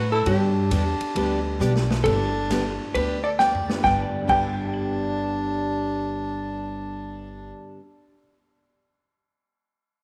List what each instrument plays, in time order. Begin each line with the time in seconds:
Already playing: upright bass A2, hollow-body jazz guitar B4
0.11 fiddle E4, hollow-body jazz guitar A4
0.26 upright bass G2, steel-string acoustic guitar D3 G3 B3 D4 G4, fiddle D4, hollow-body jazz guitar G4, kick, ride
0.71 upright bass E2, steel-string acoustic guitar D3 G3 B3 D4 G4, kick, hi-hat pedal, ride
1.00 muted upright bass stroke, ride
1.15 upright bass D2, steel-string acoustic guitar D3 G3 B3 D4 G4, upright piano G3 B3 D4 G4 B4, kick, ride
1.59 upright bass B1, steel-string acoustic guitar D3 G3 B3 D4 G4, upright piano G3 B3 D4 G4 D5, hi-hat pedal
1.76 snare
1.91 snare
2.04 upright bass G1, steel-string acoustic guitar D3 G3 B3 D4 G4, fiddle D4, hollow-body jazz guitar A4, kick, ride
2.50 steel-string acoustic guitar D3 G3 B3 D4 G4, kick, snare, hi-hat pedal, ride
2.94 upright bass D2, steel-string acoustic guitar D3 G3 B3 D4 G4, fiddle G4, hollow-body jazz guitar B4, kick, ride
3.23 fiddle A4, hollow-body jazz guitar D5
3.39 steel-string acoustic guitar D3 G3 B3 D4 G4, fiddle D5, hollow-body jazz guitar G5, snare, hi-hat pedal
3.55 floor tom
3.68 upright piano G3 B3 D4 G4 B4, snare
3.78 upright piano G2 G3
3.83 upright bass G1, steel-string acoustic guitar G2 D3 G3 B3 D4 G4, fiddle D4, upright piano D4, hollow-body jazz guitar G5, kick, snare
3.87 upright piano B4 D5
4.22 upright piano G2 G3
4.27 upright bass G1, steel-string acoustic guitar G2 D3 G3 B3 D4 G4, fiddle D4, upright piano D4 B4 F#5, hollow-body jazz guitar G5, kick, crash
4.34 upright piano D5 B5
4.44 upright piano E6
4.53 upright piano G6
4.63 upright piano D7
4.74 upright piano F#7